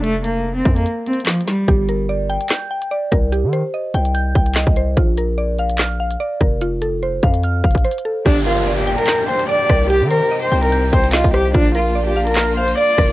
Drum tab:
CC |------------------------------------------------|------------------------------------------------|------------------------------------------------|------------------------------------------------|
HH |x-----x-----------x--x--x-----x-x-x-x-x-x-x-----|x-----x-----------x--x--x--------x--------x-----|x-----x-----------x--x--x-----x--x--------x-----|x-----x-----------x--x--x--------x--------x-----|
CP |------------------------------------x-----------|------------------------x-----------------------|------------------------------------x-----------|------------------------x-----------------------|
SD |------------------------------------o-----o-----|------------------------o-----------------------|------------------------------------o-----------|------------------------o-----------------------|
BD |------------------o-----------------------------|o-----------------------------------------o-----|------------------------------o--------o--------|o-----------------------------------------o-----|

CC |------------------------------------------------|x-----------------------------------------------|------------------------------------------------|------------------------------------------------|
HH |x-----x-----------x--x--x-----x-x-x-x-x-x-------|x-----x-----------x--x--x--------x--------x-----|x-----x-----------x--x--x-----x--x--------x-----|x-----x-----------x--x--x--------x--------x-----|
CP |------------------------------------------------|------------------------x-----------------------|------------------------------------x-----------|------------------------x-----------------------|
SD |------------------------------------------------|------------------------o-----------------r-----|------------------------------------o-----r-----|------------------------o-----------------r-----|
BD |------------------o-----------o--o--------------|o-----------------------------------------o-----|------------------------------o--------o--------|o-----------------------------------------o-----|